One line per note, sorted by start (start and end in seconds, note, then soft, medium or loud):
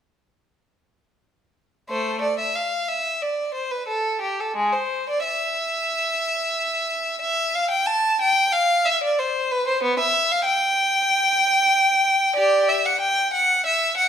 1.90 2.21 A3 soft
1.90 2.21 C5 medium
2.21 2.39 D5 medium
2.39 2.56 E5 medium
2.56 2.89 F5 medium
2.89 3.22 E5 medium
3.22 3.55 D5 medium
3.54 3.71 C5 medium
3.71 3.88 B4 medium
3.88 4.22 A4 medium
4.21 4.39 G4 medium
4.40 4.58 A4 medium
4.56 4.74 G#3 medium
4.72 5.08 C5 medium
5.09 5.26 D5 medium
5.24 7.18 E5 medium
7.21 7.54 E5 medium
7.55 7.71 F5 medium
7.70 7.87 G5 medium
7.86 8.20 A5 medium
8.21 8.53 G5 medium
8.52 8.86 F5 medium
8.86 9.02 E5 medium
9.04 9.19 D5 medium
9.19 9.50 C5 medium
9.51 9.67 B4 medium
9.68 9.83 C5 medium
9.83 9.98 B3 medium
10.00 10.30 E5 medium
10.32 10.47 F5 medium
10.45 12.33 G5 medium
12.36 12.66 G4 medium
12.36 12.68 D5 medium
12.69 12.85 E5 medium
12.86 13.01 F#5 medium
13.00 13.32 G5 medium
13.33 13.65 F#5 medium
13.66 13.97 E5 medium
13.97 14.09 F#5 medium